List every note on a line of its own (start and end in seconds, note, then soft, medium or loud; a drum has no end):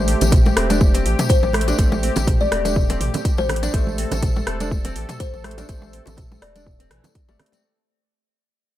0.00 0.15 A1 loud
0.00 0.54 A3 loud
0.00 7.60 A3 medium
0.00 7.60 C4 medium
0.00 0.54 G4 medium
0.00 3.72 G4 medium
0.00 0.54 C5 loud
0.08 0.15 C4 medium
0.08 open hi-hat medium
0.21 0.51 A1 medium
0.21 closed hi-hat soft
0.21 tambourine medium
0.21 low bongo medium
0.21 low conga loud
0.32 kick loud
0.32 closed hi-hat medium
0.32 mid tom loud
0.32 tambourine medium
0.32 low conga medium
0.46 tambourine soft
0.46 low bongo medium
0.46 high conga loud
0.57 1.07 E1 loud
0.57 1.52 A3 medium
0.57 0.70 C4 medium
0.57 1.52 G4 medium
0.57 1.52 C5 medium
0.57 cross-stick medium
0.57 open hi-hat medium
0.70 0.80 D4 medium
0.70 closed hi-hat soft
0.70 tambourine medium
0.70 low bongo medium
0.70 high conga loud
0.81 kick loud
0.81 tambourine medium
0.81 high conga loud
0.94 1.04 C4 loud
0.94 closed hi-hat medium
0.94 tambourine soft
0.94 low bongo medium
1.05 1.15 A1 loud
1.05 1.18 G4 medium
1.05 open hi-hat medium
1.19 closed hi-hat soft
1.19 mid tom loud
1.19 tambourine medium
1.19 low bongo loud
1.29 1.68 C5 medium
1.29 kick loud
1.29 closed hi-hat medium
1.29 tambourine medium
1.43 1.73 A1 medium
1.43 tambourine soft
1.43 low bongo medium
1.53 1.76 A3 loud
1.53 1.76 G4 medium
1.53 1.76 C5 loud
1.53 cross-stick medium
1.53 open hi-hat medium
1.53 high conga loud
1.61 closed hi-hat medium
1.68 1.78 D4 medium
1.68 closed hi-hat soft
1.68 tambourine medium
1.68 high bongo medium
1.68 low bongo medium
1.78 2.10 A1 loud
1.78 2.49 A3 medium
1.78 1.91 A3 medium
1.78 2.49 G4 medium
1.78 2.49 C5 medium
1.78 kick loud
1.78 closed hi-hat medium
1.78 tambourine medium
1.92 tambourine soft
1.92 low bongo medium
1.92 high conga loud
2.03 2.10 C4 medium
2.03 open hi-hat medium
2.16 2.47 A1 medium
2.16 closed hi-hat soft
2.16 tambourine medium
2.16 high bongo medium
2.16 low bongo medium
2.16 low conga loud
2.27 kick loud
2.27 closed hi-hat medium
2.27 mid tom loud
2.27 tambourine medium
2.27 low conga medium
2.40 3.09 D5 medium
2.40 tambourine soft
2.40 low bongo medium
2.40 high conga loud
2.52 3.02 E1 loud
2.52 3.71 A3 medium
2.52 2.65 C4 medium
2.52 3.71 G4 medium
2.52 3.71 D5 medium
2.52 cross-stick medium
2.52 open hi-hat medium
2.65 2.75 D4 medium
2.65 closed hi-hat soft
2.65 tambourine medium
2.65 low bongo medium
2.65 high conga medium
2.76 kick loud
2.76 mid tom medium
2.76 tambourine medium
2.89 2.99 C4 loud
2.89 closed hi-hat medium
2.89 tambourine soft
2.89 low bongo loud
3.01 3.10 A1 loud
3.01 3.13 G4 medium
3.01 mid tom medium
3.01 open hi-hat medium
3.14 closed hi-hat soft
3.14 tambourine medium
3.14 low bongo medium
3.14 low conga loud
3.25 kick loud
3.25 closed hi-hat medium
3.25 tambourine medium
3.38 3.69 A1 medium
3.38 3.87 C5 medium
3.38 tambourine soft
3.38 high bongo medium
3.38 low bongo medium
3.38 high conga medium
3.49 cross-stick medium
3.49 open hi-hat medium
3.49 low conga medium
3.56 closed hi-hat medium
3.63 3.73 D4 medium
3.63 closed hi-hat soft
3.63 tambourine medium
3.63 low bongo loud
3.74 4.05 A1 loud
3.74 4.44 A3 loud
3.74 3.86 A3 medium
3.74 4.44 G4 medium
3.74 7.63 A4 medium
3.74 4.44 C5 loud
3.74 kick loud
3.74 closed hi-hat medium
3.74 tambourine medium
3.87 tambourine soft
3.87 low bongo medium
3.87 high conga loud
3.98 4.05 C4 medium
3.98 open hi-hat medium
4.11 4.42 A1 medium
4.11 closed hi-hat soft
4.11 tambourine medium
4.11 low bongo medium
4.11 low conga loud
4.23 kick loud
4.23 closed hi-hat medium
4.23 mid tom loud
4.23 tambourine medium
4.23 low conga loud
4.35 tambourine soft
4.35 low bongo medium
4.35 high conga medium
4.47 4.97 E1 loud
4.47 5.42 A3 medium
4.47 4.60 C4 medium
4.47 5.42 G4 medium
4.47 5.42 C5 medium
4.47 cross-stick medium
4.47 open hi-hat medium
4.60 4.70 D4 medium
4.60 closed hi-hat soft
4.60 tambourine medium
4.60 low bongo medium
4.60 high conga medium
4.71 kick loud
4.71 tambourine medium
4.71 high conga medium
4.85 4.95 C4 loud
4.85 closed hi-hat medium
4.85 tambourine soft
4.85 low bongo medium
4.96 5.05 A1 loud
4.96 5.08 G4 medium
4.96 open hi-hat medium
5.09 closed hi-hat soft
5.09 mid tom loud
5.09 tambourine medium
5.09 low bongo medium
5.20 5.58 C5 medium
5.20 kick loud
5.20 closed hi-hat medium
5.20 tambourine medium
5.34 5.64 A1 medium
5.34 tambourine soft
5.34 low bongo medium
5.44 5.66 A3 loud
5.44 5.66 G4 medium
5.44 5.66 C5 loud
5.44 cross-stick medium
5.44 open hi-hat medium
5.44 high conga loud
5.51 closed hi-hat medium
5.58 5.68 D4 medium
5.58 closed hi-hat soft
5.58 tambourine medium
5.58 high bongo medium
5.58 low bongo medium
5.69 6.00 A1 loud
5.69 5.81 A3 medium
5.69 6.39 A3 medium
5.69 6.39 G4 medium
5.69 6.39 C5 medium
5.69 kick loud
5.69 closed hi-hat medium
5.69 tambourine medium
5.82 tambourine soft
5.82 low bongo medium
5.82 high conga loud
5.93 6.01 C4 medium
5.93 open hi-hat loud
6.06 6.37 A1 medium
6.06 closed hi-hat soft
6.06 tambourine medium
6.06 high bongo medium
6.06 low bongo medium
6.06 low conga loud
6.17 kick loud
6.17 closed hi-hat medium
6.17 mid tom loud
6.17 tambourine medium
6.17 low conga loud
6.32 tambourine soft
6.32 low bongo medium
6.32 high conga loud
6.42 6.92 E1 loud
6.42 7.26 A3 medium
6.42 6.55 C4 medium
6.42 7.26 G4 medium
6.42 6.91 D5 medium
6.42 7.26 D5 medium
6.42 cross-stick medium
6.42 open hi-hat medium
6.55 6.65 D4 medium
6.55 closed hi-hat soft
6.55 tambourine medium
6.55 low bongo medium
6.55 high conga medium
6.67 kick loud
6.67 mid tom medium
6.67 tambourine medium
6.80 6.90 C4 loud
6.80 closed hi-hat medium
6.80 tambourine soft
6.80 low bongo medium
6.91 7.00 A1 loud
6.91 7.04 E3 loud
6.91 cross-stick medium
6.91 mid tom medium
6.91 open hi-hat medium
7.04 closed hi-hat soft
7.04 tambourine medium
7.04 low bongo medium
7.04 low conga loud
7.15 kick loud
7.15 closed hi-hat medium
7.29 7.36 G1 medium
7.29 7.61 A3 medium
7.29 7.39 A3 loud
7.29 7.61 G4 medium
7.29 7.61 D5 medium
7.29 tambourine soft
7.29 high bongo medium
7.29 low bongo medium
7.29 high conga medium
7.39 7.47 C4 medium
7.39 cross-stick medium
7.39 open hi-hat medium
7.39 low conga loud
7.46 closed hi-hat medium
7.52 7.63 C4 medium
7.52 closed hi-hat soft
7.52 tambourine medium
7.52 low bongo medium
7.52 high conga medium